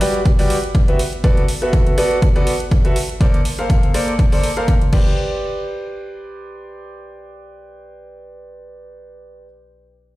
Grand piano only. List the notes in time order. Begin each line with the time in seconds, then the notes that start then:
0.01 G3 F#4 G4 B4 D5
0.39 G3 F#4 G4 B4 D5
0.88 B3 F#4 G4 B4 E5
1.24 B3 F#4 A4 B4 D5
1.62 B3 F#4 A4 B4 E5
1.98 B3 F#4 A4 B4 D5
2.36 B3 F#4 A4 B4 D5
2.85 F#4 A4 B4 E5
3.21 A#3 A4 A#4 C5 D5
3.59 A#3 A4 A#4 C5 F5
3.94 A#3 A4 A#4 C5 D5
4.32 A#3 A4 A#4 C5 D5
4.57 A#3 A4 A#4 C5 F5
4.93 G4 B4 C5 D5